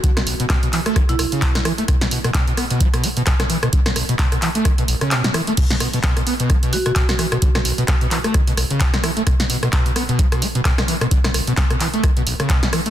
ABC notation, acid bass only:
X:1
M:4/4
L:1/16
Q:"Swing 16ths" 1/4=130
K:Bm
V:1 name="Acid bass" clef=bass
D, B,, B,,, B,, B,, B,, E, A, D, B,, B,,, C, B,, B,, E, A, | B,, B,, B,, B,, B,, B,, B, B,, F, B,, B, B,, B,, B,, E, B,, | D, B,, B,,, B,, B,, B,, E, A, D, B,, B,,, C, B,, B,, E, A, | B,, B,, B,, B,, z B,, B, B,, F, B,, B, B,, B,, B,, E, B,, |
D, B,, B,,, B,, B,, B,, E, A, D, B,, B,,, C, B,, B,, E, A, | B,, B,, B,, B,, B,, B,, B, B,, F, B,, B, B,, B,, B,, E, B,, | D, B,, B,,, B,, B,, B,, E, A, D, B,, B,,, C, B,, B,, E, A, |]